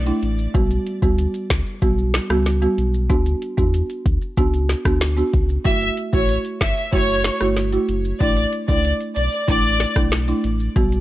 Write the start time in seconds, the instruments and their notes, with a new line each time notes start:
Already playing: sub bass B1
0.06 marimba A3 D4 E4, closed hi-hat, maracas
0.23 sub bass A1, closed hi-hat
0.38 maracas
0.54 sub bass B1, marimba G3 B3 F#4, kick, closed hi-hat, maracas
0.71 closed hi-hat, maracas
0.86 closed hi-hat
1.02 sub bass D2, marimba G3 B3 F#4, kick, maracas
1.18 closed hi-hat, maracas
1.34 closed hi-hat, maracas
1.50 sub bass C#2, finger snap, kick, snare, closed hi-hat
1.66 maracas
1.82 sub bass B1, marimba G3 B3 F#4, kick, closed hi-hat, maracas
1.98 maracas
2.14 finger snap, snare, closed hi-hat, maracas
2.30 sub bass C#2, marimba G3 B3 F#4, cross-stick, maracas
2.46 snare, closed hi-hat, maracas
2.62 marimba G3 B3 F#4, closed hi-hat, maracas
2.78 sub bass B1, closed hi-hat
2.94 maracas
3.09 sub bass D2, marimba B3 D4 F#4, kick, closed hi-hat, maracas
3.26 closed hi-hat, maracas
3.42 closed hi-hat
3.57 sub bass E2, marimba B3 D4 F#4, kick, maracas
3.74 closed hi-hat, maracas
3.90 closed hi-hat, maracas
4.06 sub bass D2, kick, closed hi-hat
4.22 maracas
4.37 sub bass C#2, marimba B3 D4 F#4, kick, closed hi-hat, maracas
4.54 closed hi-hat, maracas
4.69 snare, closed hi-hat, maracas
4.85 sub bass D2, marimba B3 D4 F#4, kick, cross-stick, maracas
5.01 finger snap, snare, closed hi-hat, maracas
5.17 marimba B3 D4 F#4, closed hi-hat, maracas
5.33 sub bass C#2, kick, closed hi-hat
5.49 maracas
5.65 sub bass F#1, marimba A3 E4 F#4, violin section E5, kick, closed hi-hat, maracas
5.81 closed hi-hat, maracas
5.97 closed hi-hat
6.13 sub bass A1, marimba A3 E4 F#4, violin section C#5, kick, maracas
6.29 closed hi-hat, maracas
6.45 closed hi-hat, maracas
6.61 sub bass G1, violin section E5, finger snap, kick, snare, closed hi-hat
6.77 maracas
6.93 sub bass F#1, marimba A3 E4 F#4, violin section C#5, kick, closed hi-hat, maracas
7.09 maracas
7.24 finger snap, snare, closed hi-hat, maracas
7.41 sub bass G1, marimba A3 E4 F#4, cross-stick, maracas
7.57 snare, closed hi-hat, maracas
7.72 marimba A3 E4 F#4, closed hi-hat, maracas
7.89 sub bass F#1, closed hi-hat
8.05 maracas
8.20 sub bass A1, marimba A3 D4 E4, violin section D5, kick, closed hi-hat, maracas
8.37 closed hi-hat, maracas
8.53 closed hi-hat
8.68 sub bass C#2, marimba A3 D4 E4, violin section D5, kick, maracas
8.84 closed hi-hat, maracas
9.01 closed hi-hat, maracas
9.16 sub bass B1, violin section D5, closed hi-hat
9.32 maracas
9.48 sub bass A1, marimba A3 D4 E4, violin section D5, kick, closed hi-hat, maracas
9.64 maracas
9.80 snare, closed hi-hat, maracas
9.96 sub bass B1, marimba A3 D4 E4, kick, cross-stick, maracas
10.12 finger snap, snare, closed hi-hat, maracas
10.28 marimba A3 D4 E4, closed hi-hat, maracas
10.44 sub bass A1, closed hi-hat
10.60 maracas
10.76 sub bass B1, marimba G3 B3 F#4, kick, closed hi-hat, maracas
10.92 closed hi-hat, maracas